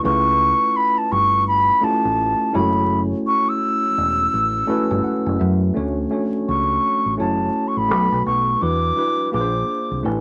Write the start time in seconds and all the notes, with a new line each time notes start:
0.03 C#2 A3 C#4 E4 F4 B4 C#6
0.76 B5
0.98 A5
1.12 G1 C#6
1.48 B5
1.81 A3 C#4 E4 F4 G4 A5, muted fingered electric bass stroke
2.05 A1
2.52 F#1 G#3 C#4 E4 F#4 C#5 B5
2.59 A3
3.27 C#6
3.49 E6
3.98 E1
4.34 A1
4.67 A3 C#4 E4 F#4 B4 A5, muted fingered electric bass stroke
4.91 G1
5.04 F#5, muted fingered electric bass stroke
5.26 F#1
5.40 F#2 E5
5.74 D2 A3 C#4 D4 F#4 C#5
6.10 A3 C#4 D4 F#4 C#5
6.48 C#2 C#6
7.06 A1
7.17 F#1 A3 C#4 E4 F#4 C#5 A5
7.68 C#6
7.77 A1 B5
7.89 B1 A3 B3 D#4 F#4 B4
8.12 B1
8.26 B1 C#6
8.60 E2 G3 D4 E4 F#4 B4 D6
8.96 G3 D4 E4 F#4 B4
9.32 A#1 A#3 D4 F4 G#4 B4 D6
9.41 C5
9.91 C2
10.03 A1 A3 D4 E4 G4 B4